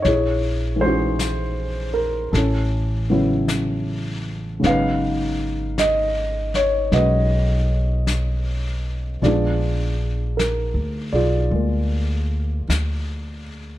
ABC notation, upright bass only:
X:1
M:4/4
L:1/8
Q:"Swing" 1/4=52
K:Bbphr
V:1 name="Upright bass" clef=bass
B,,,4 =A,,,4 | A,,,4 C,,4 | B,,,2- (3B,,, =D,, C,, D,,2 D,,2 |]